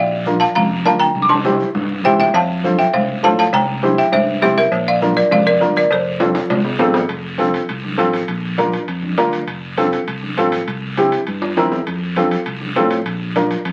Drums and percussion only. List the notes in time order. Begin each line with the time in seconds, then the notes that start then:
0.26 high conga, short guiro
0.41 short guiro
0.56 high conga, low conga, long guiro
0.85 high conga, short guiro
1.00 short guiro
1.15 high conga, long guiro
1.30 high conga
1.45 high conga, short guiro
1.60 short guiro
1.75 low conga, long guiro
2.05 low conga, short guiro
2.20 low conga, short guiro
2.34 cowbell, high conga, long guiro
2.64 high conga, short guiro
2.79 short guiro
2.94 cowbell, high conga, low conga, long guiro
3.24 high conga, short guiro
3.39 short guiro
3.53 cowbell, high conga, low conga, long guiro
3.83 high conga, short guiro
3.98 short guiro
4.12 cowbell, high conga, low conga, long guiro
4.42 high conga, low conga, low timbale, short guiro
4.58 short guiro
4.72 cowbell, high conga, long guiro
5.01 high conga, short guiro
5.17 short guiro
5.31 cowbell, high conga, low conga, long guiro
5.61 high conga, short guiro
5.76 short guiro
5.91 cowbell, high conga, long guiro
6.20 high conga, high timbale, short guiro
6.35 high timbale, short guiro
6.50 cowbell, high conga, low conga, high timbale, long guiro
6.64 low timbale
6.79 high conga, low timbale, short guiro
6.94 low timbale, short guiro
7.09 high timbale, long guiro
7.39 high conga, high timbale, short guiro
7.54 high timbale, short guiro
7.69 high timbale, long guiro
7.84 high conga
7.99 high conga, high timbale, short guiro
8.13 high timbale, short guiro
8.28 high timbale, long guiro
8.58 high conga, high timbale, short guiro
8.73 high timbale, short guiro
8.88 high timbale, long guiro
9.03 high conga
9.18 high conga, high timbale, low timbale, short guiro
9.33 high timbale, short guiro
9.47 high timbale, long guiro
9.78 high conga, high timbale, short guiro
9.92 high timbale, short guiro
10.08 high timbale, long guiro
10.23 high conga
10.37 high conga, high timbale, short guiro
10.52 high timbale, short guiro
10.68 high timbale, long guiro
10.97 high conga, high timbale, short guiro
11.12 high timbale, short guiro
11.27 high timbale, long guiro
11.42 high timbale
11.57 high conga, high timbale, short guiro
11.72 low timbale, short guiro
11.87 high timbale, long guiro
12.16 high conga, high timbale, short guiro
12.31 high timbale, short guiro
12.46 high timbale, long guiro
12.61 high conga
12.76 high conga, high timbale, low timbale, short guiro
12.91 high timbale, short guiro
13.06 high timbale, long guiro
13.36 high conga, high timbale, short guiro
13.51 high timbale, short guiro
13.65 high timbale, long guiro